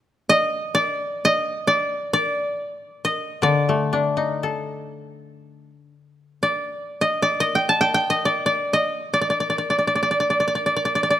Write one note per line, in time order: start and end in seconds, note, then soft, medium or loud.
0.29 0.81 D#5 medium
0.75 1.31 D5 medium
1.25 1.73 D#5 medium
1.67 2.13 D5 medium
2.13 3.11 D5 medium
3.05 3.49 D#5 medium
3.42 6.40 D3 soft
3.42 5.08 D5 medium
3.69 5.69 A3 soft
3.93 5.93 D4 soft
4.17 6.17 D#4 soft
4.43 6.41 A4 soft
6.43 7.07 D5 soft
7.01 7.28 D#5 medium
7.22 7.46 D5 medium
7.40 8.10 D#5 medium
7.55 7.80 G5 medium
7.69 8.95 A5 medium
7.81 7.94 G5 medium
7.94 9.29 G5 medium
8.10 8.31 D#5 medium
8.25 8.46 D5 medium
8.46 8.79 D5 medium
8.73 9.20 D#5 medium
9.14 9.21 D5 soft
9.21 9.30 D5 soft
9.30 9.40 D5 soft
9.40 9.49 D5 soft
9.50 9.58 D5 soft
9.58 9.70 D5 soft
9.70 9.78 D5 soft
9.79 9.87 D5 soft
9.87 9.95 D5 soft
9.95 10.02 D5 soft
10.03 10.10 D5 soft
10.11 10.20 D5 soft
10.20 10.30 D5 soft
10.30 10.40 D5 soft
10.40 10.47 D5 soft
10.48 10.55 D5 soft
10.55 10.66 D5 soft
10.66 10.76 D5 soft
10.76 10.85 D5 soft
10.85 10.95 D5 soft
10.95 11.03 D5 soft
11.03 11.10 D5 soft
11.10 11.20 D5 soft